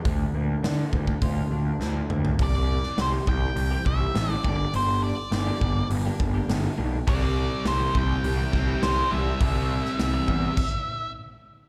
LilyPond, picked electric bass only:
\new Staff \with { instrumentName = "Picked electric bass" } { \clef bass \time 4/4 \key c \mixolydian \tempo 4 = 103 d,8 d,8 d8 d,8 d,8 d,8 d,8 d,8 | c,4 c,8 c,8 c,8 c,8 a,,8 g,,8 | g,,4 g,,8 g,,8 g,,8 g,,8 g,,8 b,,8 | c,4 c,8 c,8 c,8 c,8 c,8 c,8 |
c,4 c,8 e,8 r2 | }